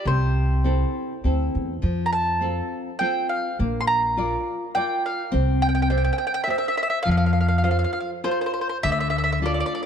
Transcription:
0.05 C2 C3 C5
0.64 C4 E4 A4
1.24 D2 C4 E4 A4
1.55 E2
1.82 F2 F3
2.06 A#5
2.12 A5
2.41 C4 F4 A4
2.99 C4 F4 A4 G5
3.29 F5
3.59 A#1 A#3
3.81 C6
3.87 A#5
4.17 F4 A#4 D5
4.75 F4 A#4 D5 G5
5.06 F5
5.32 C2 C4
5.62 G5
5.69 G5
5.75 G5
5.82 G5
5.90 C5 D5 E5 G5
5.98 G5
6.04 G5
6.13 G5
6.18 G5
6.27 G5
6.34 G5
6.44 C5 E5
6.48 D5 E5
6.58 E5
6.68 E5
6.78 E5
6.83 E5
6.90 E5
7.03 F3 F5
7.07 F2
7.11 F5
7.17 F5
7.26 F5
7.33 F5
7.41 F5
7.48 F5
7.58 F5
7.63 F4 A4 C5 F5
7.71 F5
7.79 F5
7.84 F5
7.93 F5
8.00 F5
8.24 F4 A4 C5
8.31 C5
8.41 C5
8.46 C5
8.54 C5
8.61 C5
8.69 C5
8.83 D2 D3 E5
8.92 E5
9.00 E5
9.10 E5
9.18 E5
9.24 E5
9.32 E5
9.42 D4 F4 A4 D5
9.54 D5
9.60 D5
9.66 D5
9.75 D5
9.83 D5

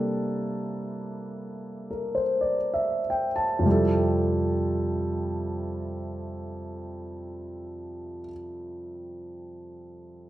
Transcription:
Already playing: C3 G3 A#3 D4 E4 A4
1.91 A#4
2.15 C5
2.41 D5
2.74 E5
3.10 G5
3.36 A5
3.59 F2 C3
3.66 G3 E4
3.72 A4

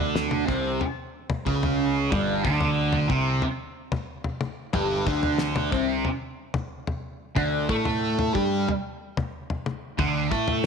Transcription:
Already playing: D2 D3 D4
0.16 snare
0.31 floor tom, mid tom
0.46 C2 C3 C4, kick
0.81 floor tom
1.30 floor tom, mid tom
1.46 C#2 C#3 C#4, kick
1.63 floor tom
2.11 G1 G2 G3, kick, floor tom
2.43 D2 D3 D4, kick
2.60 floor tom
2.93 floor tom
3.09 C2 C3 C4, kick
3.42 floor tom
3.92 floor tom, mid tom
4.24 floor tom
4.41 mid tom
4.73 G1 G2 G3, kick, floor tom
5.06 D2 D3 D4, kick
5.23 floor tom
5.38 snare
5.56 floor tom, mid tom
5.72 C2 C3 C4, kick
6.05 floor tom
6.54 floor tom, mid tom
6.87 floor tom
7.35 D2 D3 D4, kick, floor tom
7.68 A2 A3 A4, kick
7.85 floor tom
8.19 floor tom
8.34 G2 G3 G4, kick
8.69 floor tom
9.17 floor tom, mid tom
9.50 floor tom
9.66 mid tom
9.98 D2 D3 D4, kick, floor tom
10.30 A2 A3 A4, kick
10.48 floor tom

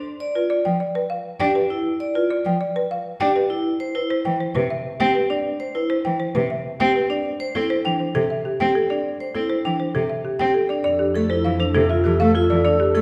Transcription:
0.20 D5
0.35 F4 B4
0.50 D5
0.65 F3 G5
0.80 D5
0.95 B4
1.10 F5
1.40 D4 G4 G5
1.55 B4
1.70 E4
2.00 D5
2.15 F4 B4
2.31 D5
2.45 F3 G5
2.61 D5
2.76 B4
2.91 F5
3.20 D4 G4 G5
3.36 B4
3.50 E4
3.80 C5
3.95 E4 B4
4.10 C5
4.25 E3 G5
4.40 C5
4.55 C3 B4
4.70 E5
5.00 C4 G4 G5
5.15 B4
5.30 D4 D5
5.60 C5
5.75 E4 B4
5.90 C5
6.05 E3 G5
6.20 C5
6.35 C3 B4
6.50 E5
6.80 C4 G4 G5
6.96 B4
7.10 D4 D5
7.40 C5
7.55 C4 E4 A4
7.70 C5
7.85 E3 D4 G5
8.00 C5
8.15 C3 A4
8.30 E5
8.45 G4
8.60 C4 G4 G5
8.75 A4
8.90 D4 D5
9.20 C5
9.35 C4 E4 A4
9.50 C5
9.65 E3 D4 G5
9.80 C5
9.95 C3 A4
10.10 E5
10.25 G4
10.39 C4 G4 G5
10.54 A4
10.69 D4 D5
10.84 F2 D4 A4 D5
10.99 G4
11.14 A3 A4
11.30 E4 C5
11.45 E3 F5
11.60 D4 C5
11.75 C3 A4
11.90 F4 E5
12.04 E3 G4
12.20 A3 A4 F5
12.35 F4 A4
12.50 E3 D5
12.65 D4 D5
12.80 G4
12.95 A3 A4

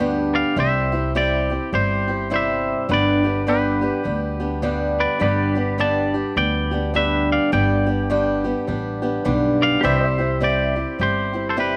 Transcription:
Already playing: D2
0.00 G2 D3 G3 B3 D4 G4
0.35 D5 F5
0.56 C2 C3 G3 C4 E4 G4 C5 E5
0.92 C4 E4 G4
1.15 C3 G3 C4 E4 G4 D5
1.50 C4 E4 G4
1.73 G1 G3 C4 E4 G4 C5
2.08 C4 E4 G4
2.30 C3 G3 C4 E4 G4 C5
2.36 E5
2.89 G1 G2 D3 G3 B3 D4 G4 B4
2.93 D5
3.24 G3 B3 D4 G4
3.47 G2 D3 G3 B3 D4 G4 B4
3.81 G3 B3 D4 G4
4.04 D2 G3 B3 D4 G4
4.40 G3 B3 D4 G4
4.62 G2 D3 G3 B3 D4 G4
5.00 B4 D5
5.19 G1 G2 D3 G3 B3 D4 G4 B4
5.24 D5
5.55 G3 B3 D4 G4
5.78 G2 D3 G3 B3 D4 G4 D5 A5
6.14 G3 B3 D4 G4
6.36 D2 G3 B3 D4 G4 D5 G5
6.71 G3 B3 D4 G4
6.94 G2 D3 G3 B3 D4 G4 B4 E5
7.32 D5 F5
7.52 G1 G2 D3 G3 B3 D4 G4 D5 G5
7.86 G3 B3 D4 G4
8.10 G2 D3 G3 B3 D4 G4
8.44 G3 B3 D4 G4
8.67 A1 G3 B3 D4 G4
9.02 G3 B3 D4 G4
9.25 B1 G2 D3 G3 B3 D4 G4
9.62 D5 F5
9.81 C2 C3 G3 C4 E4 G4 B4 C5 D5 E5
10.03 C5
10.09 E5
10.18 C4 E4 G4
10.40 C3 G3 C4 E4 G4 D5
10.76 C4 E4 G4
10.99 G1 G3 C4 E4 G4
11.03 C5
11.33 C4 E4 G4
11.49 A4 C5
11.57 C3 G3 C4 E4 G4 B4

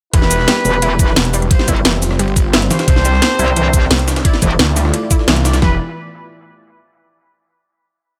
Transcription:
0.13 E1 E3 G3 B3 E4 G4 B4, kick, closed hi-hat, ride
0.22 snare
0.31 closed hi-hat, ride, shaker
0.39 snare
0.48 G3, snare, closed hi-hat, ride
0.56 snare
0.65 E1, open hi-hat, ride, shaker
0.74 cross-stick, ride
0.82 E4, closed hi-hat, ride, shaker
0.99 E3 E4 G4 B4, kick, closed hi-hat, ride, shaker
1.08 snare
1.16 E1, snare, closed hi-hat, open hi-hat
1.25 closed hi-hat, ride
1.34 G3, cross-stick, open hi-hat, ride, shaker
1.42 cross-stick, closed hi-hat
1.51 C4 F4 G4 C5, kick, closed hi-hat, ride
1.59 snare, ride
1.68 G1 E4, kick, closed hi-hat, ride, shaker
1.76 ride
1.85 F1 E3, snare, closed hi-hat, ride
2.02 snare, open hi-hat, ride, shaker
2.11 cross-stick, snare
2.19 G1 G3, cross-stick, closed hi-hat, ride, shaker
2.28 ride
2.36 kick, closed hi-hat, ride, shaker
2.53 E4, snare, closed hi-hat, ride
2.62 closed hi-hat
2.71 E3 F4 G4 C5, snare, open hi-hat, ride, shaker
2.79 snare, closed hi-hat, ride
2.88 C2 D4 G4 C5, kick, closed hi-hat, ride
2.96 snare
3.05 G3, closed hi-hat, ride, shaker
3.13 snare
3.22 snare, closed hi-hat, ride
3.31 snare
3.39 C2 E4, open hi-hat, ride, shaker
3.48 cross-stick, ride
3.56 E3, closed hi-hat, ride, shaker
3.73 D4 G4 C5, kick, closed hi-hat, ride, shaker
3.82 snare
3.90 C2 G3, snare, closed hi-hat, open hi-hat
3.99 closed hi-hat, ride
4.08 cross-stick, snare, open hi-hat, ride, shaker
4.16 cross-stick, snare, closed hi-hat, ride
4.25 A3 E4 F4 D5, kick, closed hi-hat, ride
4.34 snare, ride
4.42 F1 E3, kick, closed hi-hat, ride, shaker
4.51 ride
4.59 D2, snare, closed hi-hat, ride
4.76 G3, snare, open hi-hat, ride, shaker
4.85 cross-stick, snare
4.94 cross-stick, closed hi-hat, ride, shaker
5.11 E4, kick, closed hi-hat, ride, shaker
5.19 snare
5.28 C2 E3, snare, closed hi-hat, ride
5.36 closed hi-hat
5.45 E4 F4 D5, snare, open hi-hat, ride, shaker
5.53 snare, closed hi-hat, ride, shaker
5.62 E1 E3 E4 G4 B4, kick, snare

